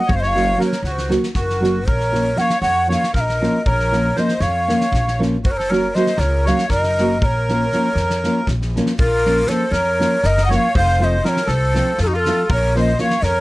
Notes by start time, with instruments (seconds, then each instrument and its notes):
Already playing: ney F#5
0.06 upright bass F#1, accordion C#5, kick
0.14 accordion C5, ney F5
0.20 accordion C#5, ney D#5, snare
0.27 ney F5
0.34 nylon-string guitar F#3 A#3 C#4 F#4, snare
0.57 nylon-string guitar F#3 A#3 C#4 F#4, accordion A#4, snare
0.65 ney C#5
0.72 snare
0.83 upright bass C#2, accordion F#4, snare
0.87 ney C#5
0.92 ney C5
0.98 snare
1.09 nylon-string guitar F#3 A#3 C#4 F#4, snare
1.23 snare
1.35 upright bass F#1, accordion F#4, ney A#4, kick, snare
1.50 snare
1.60 nylon-string guitar F#3 A#3 C#4 F#4, snare
1.87 upright bass A#1, accordion A#4, ney C#5, kick
2.00 snare
2.12 nylon-string guitar F3 A#3 C#4 F4, snare
2.36 nylon-string guitar F3 A#3 C#4 F4, accordion C#5, ney F#5, snare
2.41 ney F5
2.50 snare
2.61 upright bass F2, accordion C#5, ney F#5, snare
2.88 nylon-string guitar F3 A#3 C#4 F4, accordion C#5, snare
2.92 ney F5
3.04 snare
3.13 upright bass A#1, accordion A#4, ney F5, kick, snare
3.20 ney D#5
3.29 snare
3.41 nylon-string guitar F3 A#3 C#4 F4, snare
3.66 upright bass A#1, accordion A#4, ney C#5, kick
3.80 snare
3.92 nylon-string guitar F3 A#3 C#4 F4, snare
4.16 nylon-string guitar F3 A#3 C#4 F4, accordion C5, ney D#5, snare
4.29 snare
4.39 upright bass F2, accordion C#5, ney F5, snare
4.68 nylon-string guitar F3 A#3 C#4 F4, snare
4.81 snare
4.92 upright bass A#1, kick, snare
5.08 snare
5.19 nylon-string guitar F3 A#3 C#4 F4, snare
5.44 upright bass F#1, accordion F#4, ney C5, kick
5.50 accordion A#4, ney C#5
5.57 accordion A4, ney C5, snare
5.69 nylon-string guitar F#3 A#3 C#4 F#4, accordion A#4, ney C#5, snare
5.94 nylon-string guitar F#3 A#3 C#4 F#4, accordion C5, ney D#5, snare
6.07 snare
6.16 upright bass C#2, accordion A#4, ney C#5, snare
6.45 nylon-string guitar F#3 A#3 C#4 F#4, accordion C#5, ney F5, snare
6.58 snare
6.69 upright bass F#1, accordion A#4, ney D#5, kick, snare
6.84 snare
6.98 nylon-string guitar F#3 A#3 C#4 F#4, snare
7.22 upright bass A#1, accordion A#4, ney C#5, kick
7.49 nylon-string guitar F3 A#3 C#4 F4, snare
7.72 nylon-string guitar F3 A#3 C#4 F4, snare
7.95 upright bass F2, snare
8.10 snare
8.24 nylon-string guitar F3 A#3 C#4 F4, snare
8.47 upright bass A#1, kick, snare
8.62 snare
8.75 nylon-string guitar F3 A#3 C#4 F4, snare
8.86 snare
8.99 upright bass A#1, accordion F4, ney A#4, kick
9.25 nylon-string guitar F3 A#3 C#4 F4, snare
9.47 nylon-string guitar F3 A#3 C#4 F4, accordion A4, ney C#5, snare
9.52 ney C5
9.71 upright bass F2, accordion A#4, ney C#5, snare
9.99 nylon-string guitar F3 A#3 C#4 F4, snare
10.22 upright bass F#1, accordion A#4, ney D#5, snare
10.38 accordion D#5, snare
10.45 nylon-string guitar F3, ney F#5
10.50 nylon-string guitar A#3 C#4 F4, accordion C#5, ney F#5, snare
10.56 ney F5
10.75 upright bass F1, accordion C5, ney F5, kick
10.99 nylon-string guitar F3 A3 C4 F4, accordion C5
11.04 ney D#5
11.24 nylon-string guitar F3 A3 C4 F4, accordion A#4, snare
11.28 ney C#5
11.37 snare
11.46 upright bass C2, accordion A4, ney C5, snare
11.74 nylon-string guitar F3 A3 C4 F4, snare
11.98 upright bass F2, accordion F4, snare
12.02 accordion D#4, ney A4
12.08 ney F#4
12.13 accordion F4, ney A#4
12.19 ney A4
12.26 nylon-string guitar F3 A3 C4 F4, snare
12.49 upright bass A#1, accordion A#4, ney C#5, kick
12.75 nylon-string guitar F3 A#3 C#4 F4, accordion C5, ney D#5, snare
12.98 nylon-string guitar F3 A#3 C#4 F4, accordion C#5, snare
13.03 ney F5
13.10 snare
13.22 upright bass F2, accordion A#4, ney C#5, snare